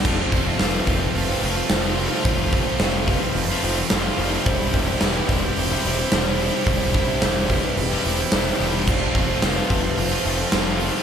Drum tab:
CC |x-------|--------|--------|--------|
HH |-ooooooo|oooooooo|oooooooo|oooooooo|
SD |--oo--o-|--o---o-|--o---o-|--oo--o-|
BD |oo-o----|oo-o----|oo-o----|oo-o----|

CC |x-------|
HH |-ooooooo|
SD |--o---o-|
BD |oo-o----|